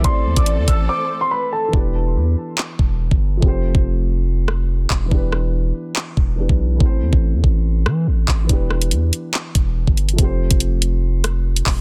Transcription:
<<
  \new Staff \with { instrumentName = "Grand piano" } { \time 4/4 \key e \phrygian \tempo 4 = 142 c'''8. d'''16 r8 e'''8 d'''8. c'''16 b''8 a''8 | r1 | r1 | r1 |
r1 | r1 | r1 | }
  \new Staff \with { instrumentName = "Soft synth lead" } { \time 4/4 \key e \phrygian d''2 c''4 b'8 a'8 | r1 | r1 | r1 |
r1 | r1 | r1 | }
  \new Staff \with { instrumentName = "Grand piano" } { \time 4/4 \key e \phrygian <e a c' a' c''>1 | <e b d' g' b'>1 | <f a c' g' c''>1 | <e b d' g' b'>2. <e b d' g' b'>4 |
<e a c' a' c''>1 | <e b d' g' b'>1 | <f a c' g' c''>1 | }
  \new Staff \with { instrumentName = "String section" } { \time 4/4 \key e \phrygian <e a c' a'>1 | r1 | r1 | r1 |
r1 | r1 | r1 | }
  \new Staff \with { instrumentName = "808-style bass" } { \clef bass \time 4/4 \key e \phrygian a,,8 e,16 a,,8 e,16 a,,8 r2 | e,,4 e,8 r4 e,,8. g,,8. | f,,8. f,,2~ f,,8. e,,8 | e,,4. r4 e,,8. b,,8. |
a,,8 e,16 a,,8 e,16 a,,4 e8 a,,8 a,,8 | e,,4 e,8 r4 e,,8. g,,8. | f,,8. f,,2~ f,,8. e,,8 | }
  \new DrumStaff \with { instrumentName = "Drums" } \drummode { \time 4/4 <hh bd>8. <hh bd>16 hh8 <hh bd>8 r4 r4 | bd4 r4 hc8 bd8 r16 bd8. | bd8. bd16 r4 r8 ss8 r8 <hc bd>8 | bd8 ss8 r4 hc8 bd8 r16 bd8. |
bd8. bd16 r8 bd8 r8 ss8 r8 <hc bd>8 | <hh bd>8 ss16 hh16 hh8 hh8 hc8 <hh bd>8 r16 bd16 hh16 hh16 | <hh bd>8. <hh bd>16 hh8 hh8 r8 <hh ss>8 r16 hh16 <hc hho bd>8 | }
>>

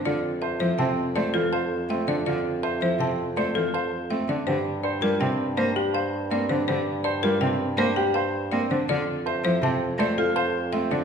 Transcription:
<<
  \new Staff \with { instrumentName = "Marimba" } { \time 6/4 \key f \major \tempo 4 = 163 d''8 r8 e''8 c''8 a''8 r8 d''8 a'8 f''8 r8 e''8 d''8 | d''8 r8 e''8 c''8 a''8 r8 d''8 a'8 f''8 r8 e''8 d''8 | c''8 r8 d''8 bes'8 g''8 r8 c''8 g'8 f''8 r8 d''8 c''8 | c''8 r8 d''8 bes'8 g''8 r8 c''8 g'8 f''8 r8 d''8 c''8 |
d''8 r8 e''8 c''8 a''8 r8 d''8 a'8 f''8 r8 e''8 d''8 | }
  \new Staff \with { instrumentName = "Grand piano" } { \time 6/4 \key f \major f'8 r8 c''8 e'8 c'8 r8 c''8 f'8 c''8 r8 c'8 d'8 | f'8 r8 c''8 e'8 c'8 r8 c''8 f'8 c''8 r8 c'8 d'8 | g'8 r8 c''8 f'8 c'8 r8 c''8 g'8 c''8 r8 c'8 d'8 | g'8 r8 c''8 f'8 c'8 r8 c''8 g'8 c''8 r8 c'8 d'8 |
f'8 r8 c''8 e'8 c'8 r8 c''8 f'8 c''8 r8 c'8 d'8 | }
  \new Staff \with { instrumentName = "Cello" } { \clef bass \time 6/4 \key f \major d8 r4 f8 c8 r8 a8 e8 r4 a8 d8 | d8 r4 f8 c8 r8 a8 e8 r4 a8 d8 | d8 r4 g8 c8 r8 bes8 r4. bes8 d8 | d8 r4 g8 c8 r8 bes8 r4. bes8 d8 |
d8 r4 f8 c8 r8 a8 r4. a8 d8 | }
  \new Staff \with { instrumentName = "Bassoon" } { \clef bass \time 6/4 \key f \major f,1.~ | f,1. | g,1.~ | g,1. |
f,1. | }
>>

